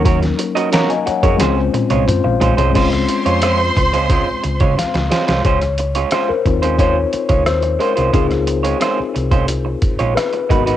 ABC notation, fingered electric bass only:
X:1
M:4/4
L:1/16
Q:1/4=89
K:Db
V:1 name="Fingered electric bass" clef=bass
E,,2 z4 z F,, D,,2 z C,, z B,,, B,,, C,, | D,,2 z F,,3 D,,3 z D,, D, z D,, z C,, | D,,4 z2 E,,4 z D,, E,,2 z C,, | D,,4 z2 C,,4 z B,,, z2 A,,,2 |]